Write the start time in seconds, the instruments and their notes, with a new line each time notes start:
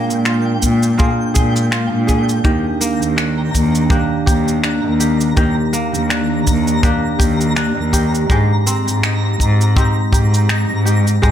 Already playing: kora A#2 A#3 F4 G#4, ambient pad G#3 A#3 D4, synth texture G5
0.09 cello A#2, shaker
0.25 kora F4, finger snap, shaker
0.62 cello A#2, kick, shaker
0.83 shaker
0.98 kora A#3 F4 G#4, kick, shaker
1.34 cello A#2, kora G#4, kick, shaker
1.56 shaker
1.71 kora F4, finger snap, shaker
1.92 cello A#2
2.07 kora G#4, kick, shaker
2.29 shaker
2.44 cello D#2, ambient pad D#3 G4, kora D#3 G4, synth texture A#5, kick, shaker
2.81 kora A#3, shaker
3.01 cello D#2, shaker
3.16 kora D4, finger snap, shaker
3.54 cello D#2, kick, shaker
3.75 shaker
3.90 kora A#3 D4 G4, kick, shaker
4.26 cello D#2, kora G4, kick, shaker
4.48 shaker
4.64 kora D4, finger snap, shaker
4.85 cello D#2
5.00 kora G4, shaker
5.21 shaker
5.37 cello D#2, kora D#3 G4, kick, shaker
5.73 kora A#3, shaker
5.94 cello D#2, shaker
6.09 kora D4, finger snap, shaker
6.47 cello D#2, kick, shaker
6.67 shaker
6.83 kora A#3 D4 G4, kick, shaker
7.19 cello D#2, kora G4, kick, shaker
7.41 shaker
7.56 kora D4, finger snap, shaker
7.77 cello D#2
7.93 kora G4, kick, shaker
8.15 shaker
8.30 cello G#2, kora G#3 G4, ambient pad G#3 C4, kick, shaker
8.67 kora C4, shaker
8.86 cello G#2, shaker
9.03 kora D#4, finger snap, shaker
9.40 cello G#2, kick, shaker
9.61 shaker
9.76 kora C4 D#4 G4, kick, shaker
10.12 cello G#2, kora G4, kick, shaker
10.34 shaker
10.49 kora D#4, finger snap, shaker
10.69 cello G#2
10.85 kora G4, shaker
11.07 shaker
11.22 cello G#2, kora G#3 G4, kick, shaker